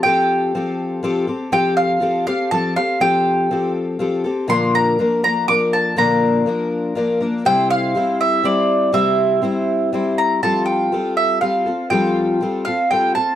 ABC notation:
X:1
M:3/4
L:1/8
Q:1/4=121
K:F
V:1 name="Mandolin"
g4 z2 | g f2 f a f | g3 z3 | c' b2 b d' a |
b3 z3 | g f2 e d2 | e4 z b | a g2 e f2 |
g3 f g a |]
V:2 name="Twelve-string acoustic guitar"
[F,CGA]2 [F,CGA]2 [F,CGA] [CGA] | [F,CGA]2 [F,CGA] [CGA] [F,CGA] [CGA] | [F,CGA]2 [F,CGA]2 [F,CGA] [CGA] | [B,,D,F,B,DB]2 [F,B,DB] [F,B,DB] [F,B,DB]2 |
[B,,D,F,B,DB]2 [F,B,DB]2 [F,B,DB] [F,B,DB] | [C,G,CEc]2 [G,CEc]2 [G,CEc]2 | [C,G,CEc]2 [G,CEc]2 [G,CEc]2 | [F,G,CFA]2 [G,CFA]2 [G,CFA] [CFA] |
[F,G,CFA]2 [G,CFA] [CFA] [G,CFA] [CFA] |]